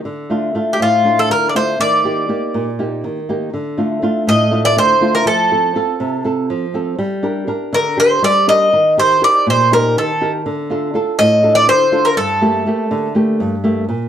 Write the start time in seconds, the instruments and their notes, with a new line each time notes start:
0.05 nylon-string guitar D3
0.30 nylon-string guitar A3 D4 F4
0.55 nylon-string guitar A3 D4 F4
0.73 bouzouki G4
0.80 nylon-string guitar A2, bouzouki F4
1.04 nylon-string guitar A3 D4 F4
1.19 bouzouki A4
1.30 nylon-string guitar D3, bouzouki A#4
1.49 bouzouki D5
1.55 nylon-string guitar A3 D4 F4, bouzouki C5
1.80 nylon-string guitar D#3, bouzouki D5
2.04 nylon-string guitar A#3 D#4 G4
2.29 nylon-string guitar A#3 D#4 G4
2.54 nylon-string guitar A#2
2.79 nylon-string guitar A#3 D#4 G4
3.04 nylon-string guitar D#3
3.29 nylon-string guitar A#3 D#4 G4
3.54 nylon-string guitar D3
3.77 nylon-string guitar A3 D4 F4
4.02 nylon-string guitar A3 D4 F4
4.27 nylon-string guitar A2, bouzouki D#5
4.51 nylon-string guitar A3 D4 F4
4.65 bouzouki D5
4.77 nylon-string guitar D3, bouzouki C5
5.01 nylon-string guitar A3 D4 F4
5.15 bouzouki A#4
5.26 nylon-string guitar F3, bouzouki A4
5.51 nylon-string guitar C4 F4 A4
5.75 nylon-string guitar C4 F4 A4
6.00 nylon-string guitar C3
6.24 nylon-string guitar C4 F4 A4
6.50 nylon-string guitar F3
6.74 nylon-string guitar C4 F4 A4
6.99 nylon-string guitar G3
7.23 nylon-string guitar D4 G4 A#4
7.47 nylon-string guitar D4 G4 A#4
7.73 nylon-string guitar D3, bouzouki A#4
7.97 nylon-string guitar D4 G4 A#4, bouzouki C5
8.22 nylon-string guitar G3, bouzouki D5
8.47 nylon-string guitar D4 G4 A#4, bouzouki D#5
8.73 nylon-string guitar D#3
8.97 nylon-string guitar D#4 G4 A#4, bouzouki C5
9.22 nylon-string guitar D#4 G4 A#4, bouzouki D5
9.47 nylon-string guitar A#2, bouzouki C5
9.72 nylon-string guitar D#4 G4 A#4, bouzouki A#4
9.97 nylon-string guitar D#3, bouzouki A4
10.21 nylon-string guitar D#4 G4 A#4
10.46 nylon-string guitar D3
10.70 nylon-string guitar D4 F4 A4
10.94 nylon-string guitar D4 F4 A4
11.19 nylon-string guitar A2, bouzouki D#5
11.43 nylon-string guitar D4 F4 A4
11.55 bouzouki D5
11.67 nylon-string guitar D3, bouzouki C5
11.92 nylon-string guitar D4 F4 A4
12.05 bouzouki A#4
12.17 nylon-string guitar G2, bouzouki A4
12.41 nylon-string guitar A3 A#3 G4
12.66 nylon-string guitar A3 A#3 G4
12.91 nylon-string guitar D3
13.15 nylon-string guitar A3 A#3 G4
13.40 nylon-string guitar G2
13.64 nylon-string guitar A3 A#3 G4
13.89 nylon-string guitar A#2